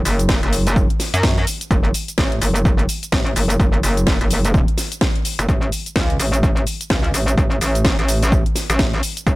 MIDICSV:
0, 0, Header, 1, 3, 480
1, 0, Start_track
1, 0, Key_signature, 3, "minor"
1, 0, Tempo, 472441
1, 1734, Time_signature, 4, 2, 24, 8
1, 9506, End_track
2, 0, Start_track
2, 0, Title_t, "Wobble bass"
2, 0, Program_c, 0, 39
2, 53, Note_on_c, 0, 30, 98
2, 413, Note_off_c, 0, 30, 0
2, 436, Note_on_c, 0, 30, 98
2, 893, Note_off_c, 0, 30, 0
2, 1156, Note_on_c, 0, 42, 100
2, 1478, Note_off_c, 0, 42, 0
2, 1734, Note_on_c, 0, 30, 96
2, 1958, Note_off_c, 0, 30, 0
2, 2214, Note_on_c, 0, 33, 97
2, 2438, Note_off_c, 0, 33, 0
2, 2453, Note_on_c, 0, 30, 101
2, 2918, Note_off_c, 0, 30, 0
2, 3173, Note_on_c, 0, 33, 96
2, 3398, Note_off_c, 0, 33, 0
2, 3414, Note_on_c, 0, 30, 97
2, 3638, Note_off_c, 0, 30, 0
2, 3654, Note_on_c, 0, 30, 95
2, 3878, Note_off_c, 0, 30, 0
2, 3894, Note_on_c, 0, 30, 101
2, 4254, Note_off_c, 0, 30, 0
2, 4276, Note_on_c, 0, 30, 98
2, 4734, Note_off_c, 0, 30, 0
2, 5476, Note_on_c, 0, 30, 97
2, 5558, Note_off_c, 0, 30, 0
2, 5573, Note_on_c, 0, 33, 102
2, 5798, Note_off_c, 0, 33, 0
2, 6053, Note_on_c, 0, 37, 97
2, 6278, Note_off_c, 0, 37, 0
2, 6294, Note_on_c, 0, 33, 101
2, 6758, Note_off_c, 0, 33, 0
2, 7014, Note_on_c, 0, 37, 94
2, 7238, Note_off_c, 0, 37, 0
2, 7253, Note_on_c, 0, 33, 98
2, 7478, Note_off_c, 0, 33, 0
2, 7494, Note_on_c, 0, 33, 97
2, 7718, Note_off_c, 0, 33, 0
2, 7734, Note_on_c, 0, 33, 103
2, 8094, Note_off_c, 0, 33, 0
2, 8116, Note_on_c, 0, 33, 99
2, 8573, Note_off_c, 0, 33, 0
2, 8836, Note_on_c, 0, 33, 100
2, 9158, Note_off_c, 0, 33, 0
2, 9414, Note_on_c, 0, 33, 98
2, 9506, Note_off_c, 0, 33, 0
2, 9506, End_track
3, 0, Start_track
3, 0, Title_t, "Drums"
3, 54, Note_on_c, 9, 46, 111
3, 58, Note_on_c, 9, 69, 77
3, 156, Note_off_c, 9, 46, 0
3, 160, Note_off_c, 9, 69, 0
3, 197, Note_on_c, 9, 42, 69
3, 201, Note_on_c, 9, 69, 45
3, 293, Note_on_c, 9, 38, 124
3, 294, Note_on_c, 9, 36, 111
3, 299, Note_off_c, 9, 42, 0
3, 299, Note_off_c, 9, 69, 0
3, 299, Note_on_c, 9, 69, 33
3, 394, Note_off_c, 9, 38, 0
3, 395, Note_off_c, 9, 36, 0
3, 400, Note_off_c, 9, 69, 0
3, 437, Note_on_c, 9, 42, 54
3, 535, Note_on_c, 9, 46, 109
3, 539, Note_off_c, 9, 42, 0
3, 539, Note_on_c, 9, 69, 78
3, 637, Note_off_c, 9, 46, 0
3, 641, Note_off_c, 9, 69, 0
3, 677, Note_on_c, 9, 42, 72
3, 681, Note_on_c, 9, 69, 45
3, 774, Note_on_c, 9, 36, 127
3, 779, Note_off_c, 9, 42, 0
3, 779, Note_off_c, 9, 69, 0
3, 779, Note_on_c, 9, 69, 33
3, 876, Note_off_c, 9, 36, 0
3, 880, Note_off_c, 9, 69, 0
3, 917, Note_on_c, 9, 42, 54
3, 1013, Note_on_c, 9, 38, 37
3, 1015, Note_on_c, 9, 46, 109
3, 1018, Note_off_c, 9, 42, 0
3, 1019, Note_on_c, 9, 69, 73
3, 1114, Note_off_c, 9, 38, 0
3, 1116, Note_off_c, 9, 46, 0
3, 1120, Note_off_c, 9, 69, 0
3, 1157, Note_on_c, 9, 42, 68
3, 1161, Note_on_c, 9, 69, 46
3, 1253, Note_on_c, 9, 38, 127
3, 1254, Note_on_c, 9, 36, 113
3, 1259, Note_off_c, 9, 42, 0
3, 1259, Note_off_c, 9, 69, 0
3, 1259, Note_on_c, 9, 69, 33
3, 1354, Note_off_c, 9, 38, 0
3, 1356, Note_off_c, 9, 36, 0
3, 1360, Note_off_c, 9, 69, 0
3, 1397, Note_on_c, 9, 42, 40
3, 1494, Note_on_c, 9, 46, 109
3, 1498, Note_on_c, 9, 69, 80
3, 1499, Note_off_c, 9, 42, 0
3, 1596, Note_off_c, 9, 46, 0
3, 1600, Note_off_c, 9, 69, 0
3, 1637, Note_on_c, 9, 42, 70
3, 1641, Note_on_c, 9, 69, 45
3, 1734, Note_on_c, 9, 36, 122
3, 1738, Note_off_c, 9, 69, 0
3, 1738, Note_on_c, 9, 69, 32
3, 1739, Note_off_c, 9, 42, 0
3, 1836, Note_off_c, 9, 36, 0
3, 1840, Note_off_c, 9, 69, 0
3, 1876, Note_on_c, 9, 42, 36
3, 1974, Note_on_c, 9, 46, 111
3, 1978, Note_off_c, 9, 42, 0
3, 1978, Note_on_c, 9, 69, 74
3, 2076, Note_off_c, 9, 46, 0
3, 2080, Note_off_c, 9, 69, 0
3, 2117, Note_on_c, 9, 42, 66
3, 2121, Note_on_c, 9, 69, 44
3, 2213, Note_on_c, 9, 38, 124
3, 2214, Note_on_c, 9, 36, 112
3, 2218, Note_off_c, 9, 42, 0
3, 2219, Note_off_c, 9, 69, 0
3, 2219, Note_on_c, 9, 69, 32
3, 2314, Note_off_c, 9, 38, 0
3, 2316, Note_off_c, 9, 36, 0
3, 2320, Note_off_c, 9, 69, 0
3, 2357, Note_on_c, 9, 42, 52
3, 2454, Note_on_c, 9, 46, 115
3, 2458, Note_on_c, 9, 69, 74
3, 2459, Note_off_c, 9, 42, 0
3, 2556, Note_off_c, 9, 46, 0
3, 2560, Note_off_c, 9, 69, 0
3, 2596, Note_on_c, 9, 42, 66
3, 2601, Note_on_c, 9, 69, 45
3, 2694, Note_on_c, 9, 36, 126
3, 2698, Note_off_c, 9, 42, 0
3, 2699, Note_off_c, 9, 69, 0
3, 2699, Note_on_c, 9, 69, 31
3, 2796, Note_off_c, 9, 36, 0
3, 2800, Note_off_c, 9, 69, 0
3, 2837, Note_on_c, 9, 42, 50
3, 2935, Note_on_c, 9, 46, 104
3, 2938, Note_off_c, 9, 42, 0
3, 2939, Note_on_c, 9, 69, 74
3, 3036, Note_off_c, 9, 46, 0
3, 3040, Note_off_c, 9, 69, 0
3, 3077, Note_on_c, 9, 42, 67
3, 3081, Note_on_c, 9, 69, 46
3, 3173, Note_on_c, 9, 38, 127
3, 3174, Note_on_c, 9, 36, 116
3, 3179, Note_off_c, 9, 42, 0
3, 3179, Note_off_c, 9, 69, 0
3, 3179, Note_on_c, 9, 69, 33
3, 3274, Note_off_c, 9, 38, 0
3, 3275, Note_off_c, 9, 36, 0
3, 3281, Note_off_c, 9, 69, 0
3, 3317, Note_on_c, 9, 42, 37
3, 3415, Note_on_c, 9, 46, 109
3, 3419, Note_off_c, 9, 42, 0
3, 3419, Note_on_c, 9, 69, 75
3, 3516, Note_off_c, 9, 46, 0
3, 3520, Note_off_c, 9, 69, 0
3, 3557, Note_on_c, 9, 42, 67
3, 3561, Note_on_c, 9, 69, 45
3, 3654, Note_on_c, 9, 36, 125
3, 3659, Note_off_c, 9, 42, 0
3, 3659, Note_off_c, 9, 69, 0
3, 3659, Note_on_c, 9, 69, 31
3, 3755, Note_off_c, 9, 36, 0
3, 3760, Note_off_c, 9, 69, 0
3, 3798, Note_on_c, 9, 42, 34
3, 3895, Note_on_c, 9, 46, 109
3, 3899, Note_off_c, 9, 42, 0
3, 3899, Note_on_c, 9, 69, 78
3, 3996, Note_off_c, 9, 46, 0
3, 4000, Note_off_c, 9, 69, 0
3, 4037, Note_on_c, 9, 42, 63
3, 4041, Note_on_c, 9, 69, 43
3, 4132, Note_on_c, 9, 38, 117
3, 4134, Note_on_c, 9, 36, 109
3, 4139, Note_off_c, 9, 42, 0
3, 4139, Note_off_c, 9, 69, 0
3, 4139, Note_on_c, 9, 69, 32
3, 4234, Note_off_c, 9, 38, 0
3, 4236, Note_off_c, 9, 36, 0
3, 4240, Note_off_c, 9, 69, 0
3, 4277, Note_on_c, 9, 42, 52
3, 4374, Note_on_c, 9, 46, 114
3, 4378, Note_off_c, 9, 42, 0
3, 4378, Note_on_c, 9, 69, 77
3, 4476, Note_off_c, 9, 46, 0
3, 4480, Note_off_c, 9, 69, 0
3, 4517, Note_on_c, 9, 42, 64
3, 4521, Note_on_c, 9, 69, 46
3, 4614, Note_on_c, 9, 36, 127
3, 4618, Note_off_c, 9, 42, 0
3, 4619, Note_off_c, 9, 69, 0
3, 4619, Note_on_c, 9, 69, 33
3, 4715, Note_off_c, 9, 36, 0
3, 4720, Note_off_c, 9, 69, 0
3, 4757, Note_on_c, 9, 42, 51
3, 4852, Note_on_c, 9, 38, 36
3, 4854, Note_on_c, 9, 46, 108
3, 4858, Note_off_c, 9, 42, 0
3, 4858, Note_on_c, 9, 69, 76
3, 4954, Note_off_c, 9, 38, 0
3, 4956, Note_off_c, 9, 46, 0
3, 4960, Note_off_c, 9, 69, 0
3, 4996, Note_on_c, 9, 42, 65
3, 5000, Note_on_c, 9, 69, 47
3, 5092, Note_on_c, 9, 38, 124
3, 5094, Note_on_c, 9, 36, 115
3, 5098, Note_off_c, 9, 42, 0
3, 5098, Note_off_c, 9, 69, 0
3, 5098, Note_on_c, 9, 69, 34
3, 5193, Note_off_c, 9, 38, 0
3, 5195, Note_off_c, 9, 36, 0
3, 5199, Note_off_c, 9, 69, 0
3, 5236, Note_on_c, 9, 42, 37
3, 5334, Note_on_c, 9, 46, 110
3, 5338, Note_off_c, 9, 42, 0
3, 5338, Note_on_c, 9, 69, 79
3, 5436, Note_off_c, 9, 46, 0
3, 5440, Note_off_c, 9, 69, 0
3, 5477, Note_on_c, 9, 42, 63
3, 5481, Note_on_c, 9, 69, 46
3, 5574, Note_on_c, 9, 36, 119
3, 5578, Note_off_c, 9, 42, 0
3, 5578, Note_off_c, 9, 69, 0
3, 5578, Note_on_c, 9, 69, 32
3, 5675, Note_off_c, 9, 36, 0
3, 5680, Note_off_c, 9, 69, 0
3, 5717, Note_on_c, 9, 42, 35
3, 5814, Note_on_c, 9, 46, 104
3, 5818, Note_off_c, 9, 42, 0
3, 5819, Note_on_c, 9, 69, 79
3, 5916, Note_off_c, 9, 46, 0
3, 5920, Note_off_c, 9, 69, 0
3, 5956, Note_on_c, 9, 42, 63
3, 5960, Note_on_c, 9, 69, 44
3, 6052, Note_on_c, 9, 38, 116
3, 6054, Note_on_c, 9, 36, 107
3, 6058, Note_off_c, 9, 42, 0
3, 6058, Note_off_c, 9, 69, 0
3, 6058, Note_on_c, 9, 69, 35
3, 6154, Note_off_c, 9, 38, 0
3, 6155, Note_off_c, 9, 36, 0
3, 6160, Note_off_c, 9, 69, 0
3, 6197, Note_on_c, 9, 42, 51
3, 6294, Note_on_c, 9, 46, 110
3, 6298, Note_on_c, 9, 69, 82
3, 6299, Note_off_c, 9, 42, 0
3, 6396, Note_off_c, 9, 46, 0
3, 6400, Note_off_c, 9, 69, 0
3, 6437, Note_on_c, 9, 42, 67
3, 6441, Note_on_c, 9, 69, 48
3, 6534, Note_on_c, 9, 36, 122
3, 6538, Note_off_c, 9, 42, 0
3, 6538, Note_off_c, 9, 69, 0
3, 6538, Note_on_c, 9, 69, 35
3, 6635, Note_off_c, 9, 36, 0
3, 6640, Note_off_c, 9, 69, 0
3, 6676, Note_on_c, 9, 42, 52
3, 6774, Note_on_c, 9, 46, 102
3, 6778, Note_off_c, 9, 42, 0
3, 6778, Note_on_c, 9, 69, 75
3, 6875, Note_off_c, 9, 46, 0
3, 6880, Note_off_c, 9, 69, 0
3, 6916, Note_on_c, 9, 42, 67
3, 6920, Note_on_c, 9, 69, 47
3, 7012, Note_on_c, 9, 38, 119
3, 7014, Note_on_c, 9, 36, 110
3, 7018, Note_off_c, 9, 42, 0
3, 7018, Note_off_c, 9, 69, 0
3, 7018, Note_on_c, 9, 69, 35
3, 7113, Note_off_c, 9, 38, 0
3, 7115, Note_off_c, 9, 36, 0
3, 7119, Note_off_c, 9, 69, 0
3, 7156, Note_on_c, 9, 42, 37
3, 7254, Note_on_c, 9, 46, 108
3, 7258, Note_off_c, 9, 42, 0
3, 7258, Note_on_c, 9, 69, 84
3, 7356, Note_off_c, 9, 46, 0
3, 7360, Note_off_c, 9, 69, 0
3, 7397, Note_on_c, 9, 42, 67
3, 7401, Note_on_c, 9, 69, 47
3, 7494, Note_on_c, 9, 36, 115
3, 7498, Note_off_c, 9, 42, 0
3, 7499, Note_off_c, 9, 69, 0
3, 7499, Note_on_c, 9, 69, 34
3, 7595, Note_off_c, 9, 36, 0
3, 7600, Note_off_c, 9, 69, 0
3, 7637, Note_on_c, 9, 42, 36
3, 7734, Note_on_c, 9, 46, 106
3, 7738, Note_off_c, 9, 42, 0
3, 7738, Note_on_c, 9, 69, 80
3, 7836, Note_off_c, 9, 46, 0
3, 7840, Note_off_c, 9, 69, 0
3, 7876, Note_on_c, 9, 42, 66
3, 7880, Note_on_c, 9, 69, 48
3, 7972, Note_on_c, 9, 38, 110
3, 7974, Note_on_c, 9, 36, 100
3, 7978, Note_off_c, 9, 42, 0
3, 7978, Note_off_c, 9, 69, 0
3, 7978, Note_on_c, 9, 69, 36
3, 8073, Note_off_c, 9, 38, 0
3, 8075, Note_off_c, 9, 36, 0
3, 8080, Note_off_c, 9, 69, 0
3, 8116, Note_on_c, 9, 42, 54
3, 8214, Note_on_c, 9, 46, 105
3, 8218, Note_off_c, 9, 42, 0
3, 8218, Note_on_c, 9, 69, 85
3, 8316, Note_off_c, 9, 46, 0
3, 8320, Note_off_c, 9, 69, 0
3, 8357, Note_on_c, 9, 42, 69
3, 8361, Note_on_c, 9, 69, 49
3, 8454, Note_on_c, 9, 36, 122
3, 8458, Note_off_c, 9, 42, 0
3, 8458, Note_off_c, 9, 69, 0
3, 8458, Note_on_c, 9, 69, 36
3, 8555, Note_off_c, 9, 36, 0
3, 8560, Note_off_c, 9, 69, 0
3, 8596, Note_on_c, 9, 42, 53
3, 8692, Note_on_c, 9, 38, 36
3, 8694, Note_on_c, 9, 46, 101
3, 8698, Note_off_c, 9, 42, 0
3, 8698, Note_on_c, 9, 69, 78
3, 8793, Note_off_c, 9, 38, 0
3, 8796, Note_off_c, 9, 46, 0
3, 8800, Note_off_c, 9, 69, 0
3, 8836, Note_on_c, 9, 42, 69
3, 8840, Note_on_c, 9, 69, 49
3, 8931, Note_on_c, 9, 38, 115
3, 8934, Note_on_c, 9, 36, 103
3, 8937, Note_off_c, 9, 69, 0
3, 8937, Note_on_c, 9, 69, 37
3, 8938, Note_off_c, 9, 42, 0
3, 9033, Note_off_c, 9, 38, 0
3, 9035, Note_off_c, 9, 36, 0
3, 9039, Note_off_c, 9, 69, 0
3, 9076, Note_on_c, 9, 42, 38
3, 9174, Note_on_c, 9, 46, 103
3, 9177, Note_off_c, 9, 42, 0
3, 9178, Note_on_c, 9, 69, 83
3, 9275, Note_off_c, 9, 46, 0
3, 9279, Note_off_c, 9, 69, 0
3, 9316, Note_on_c, 9, 42, 68
3, 9320, Note_on_c, 9, 69, 48
3, 9414, Note_on_c, 9, 36, 114
3, 9418, Note_off_c, 9, 42, 0
3, 9418, Note_off_c, 9, 69, 0
3, 9418, Note_on_c, 9, 69, 35
3, 9506, Note_off_c, 9, 36, 0
3, 9506, Note_off_c, 9, 69, 0
3, 9506, End_track
0, 0, End_of_file